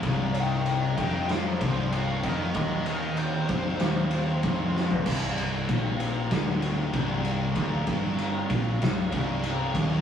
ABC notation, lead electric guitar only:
X:1
M:4/4
L:1/8
Q:1/4=96
K:Cm
V:1 name="Lead electric guitar"
z [eg] [eg] [eg] [cf] [cf] [cf] [Be] | [Be] [Be] c6 | z8 | z8 |]